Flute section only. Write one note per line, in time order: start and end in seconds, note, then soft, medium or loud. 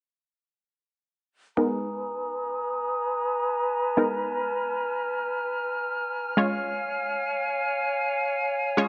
1.58 6.34 B4 medium
1.58 6.34 G#5 medium
1.58 6.34 A#5 medium
1.58 3.95 D#6 medium
3.98 8.55 F6 medium
6.38 8.88 C#5 medium
6.38 8.88 F5 medium
6.38 8.88 G#5 medium
8.78 8.88 D#6 medium